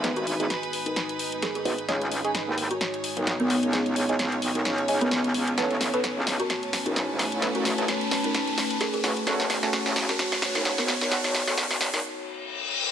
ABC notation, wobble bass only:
X:1
M:4/4
L:1/16
Q:"Swing 16ths" 1/4=130
K:C#m
V:1 name="Wobble bass" clef=bass
G,,,2 G,,,2 z8 z2 G,,, z | C,,3 z2 D,,2 z4 B,,,4 C,,- | C,,2 C,,2 C,,2 B,,,2 C,,3 C,,3 C,,2 | A,,,3 z2 C,,2 z4 E,,,4 A,,,- |
A,,,2 A,,,2 z8 z2 A,,, z | F,,,3 z2 A,,,2 z4 E,,,4 F,,,- | F,,,2 F,,,2 F,,,2 F,,,2 z8 |]